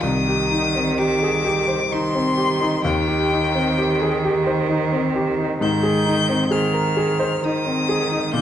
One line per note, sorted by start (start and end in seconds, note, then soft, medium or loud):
0.01 2.80 C2 medium
0.01 1.87 D#3 medium
0.01 0.99 D#6 loud
0.28 0.66 G4 medium
0.51 0.89 D#4 medium
0.75 1.13 C4 medium
0.98 1.36 G4 medium
0.98 1.93 D6 loud
1.22 1.45 G#4 medium
1.45 1.82 G4 medium
1.68 2.05 C5 medium
1.90 2.81 D#3 medium
1.90 2.28 D#4 medium
1.90 2.84 C6 loud
2.15 2.52 C4 medium
2.38 2.75 G4 medium
2.61 2.84 D#4 medium
2.84 5.57 D#2 medium
2.84 5.57 D#3 medium
2.84 4.66 G5 loud
3.08 3.45 G4 medium
3.32 3.69 D#4 medium
3.55 3.92 C4 medium
3.78 4.15 G4 medium
4.01 4.24 G#4 medium
4.24 4.61 G4 medium
4.46 4.83 C5 medium
4.69 5.06 D#4 medium
4.91 5.29 C4 medium
5.16 5.52 G4 medium
5.39 5.61 D#4 medium
5.61 8.30 G#2 medium
5.61 6.50 D#3 medium
5.61 6.54 G6 loud
5.83 6.19 G#4 medium
6.06 6.42 D#4 medium
6.29 6.65 C4 medium
6.51 7.42 D#3 medium
6.51 6.88 G#4 medium
6.51 7.45 F6 loud
6.74 6.97 A#4 medium
6.97 7.34 G#4 medium
7.19 7.57 C5 medium
7.43 8.36 D#3 medium
7.43 7.80 D#4 medium
7.43 8.33 D#6 loud
7.66 8.02 C4 medium
7.89 8.25 G#4 medium
8.11 8.34 D#4 medium
8.33 8.41 A#2 medium
8.33 8.41 D3 medium
8.33 8.41 G6 loud